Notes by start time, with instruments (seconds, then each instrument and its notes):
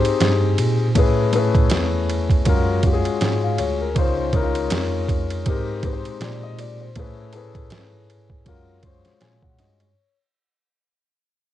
Already playing: grand piano C4 D#4 G4 G#4 C5
0.04 tine electric piano G2, ride
0.20 tine electric piano G2, snare, hi-hat pedal, ride
0.58 tine electric piano A#2, ride
0.95 tine electric piano A2, grand piano A3 C#4 E4 G#4 B4, kick, ride
1.32 grand piano A3 C#4 E4 G#4 B4, ride
1.55 kick, ride
1.70 tine electric piano E2, snare, hi-hat pedal, ride
2.09 ride
2.30 kick, ride
2.45 tine electric piano F#2, grand piano G#3 C#4 F4 F#4 A#4, kick, ride
2.83 grand piano G#3 C#4 F4 F#4 G4, kick, ride
2.93 grand piano G#4
3.05 ride
3.21 tine electric piano G#2, snare, hi-hat pedal, ride
3.43 grand piano F5
3.58 tine electric piano D2, grand piano C#5, ride
3.81 grand piano A#4
3.94 tine electric piano C#2, grand piano G#3 C#4 D#4 F4 C5, kick, ride
4.32 grand piano G#3 C#4 D#4 E4 A#4, kick, ride
4.42 grand piano F4
4.55 ride
4.70 tine electric piano F2, snare, hi-hat pedal, ride
5.09 kick, ride
5.30 ride
5.46 tine electric piano G#2, grand piano G#3 C4 D#4 G4 A#4, kick, ride
5.83 grand piano G#3 C4 D#4 G4 B4, kick, ride
5.93 grand piano C5
6.05 tine electric piano A#2, ride
6.21 tine electric piano A#2, grand piano D5, snare, hi-hat pedal, ride
6.43 grand piano D#5
6.58 tine electric piano A#2, grand piano D5, ride
6.81 grand piano C5
6.96 tine electric piano A2, grand piano A3 C#4 E4 G#4 B4, kick, ride
7.33 grand piano C4 E4 G#4 A4 B4, ride
7.40 grand piano C#4
7.55 kick, ride
7.70 tine electric piano G#2, snare, hi-hat pedal, ride
8.10 ride
8.30 kick
8.45 tine electric piano F#2, grand piano G#3 C#4 F4 F#4 A#4, kick, ride
8.82 grand piano G#3 C#4 F4 F#4 C5, kick, ride
9.05 tine electric piano A#2, snare, ride
9.21 tine electric piano A#2, grand piano G#5, snare, hi-hat pedal, ride
9.43 grand piano F#5, kick
9.59 tine electric piano G2, grand piano D#5, snare, ride
9.80 grand piano C#5, ride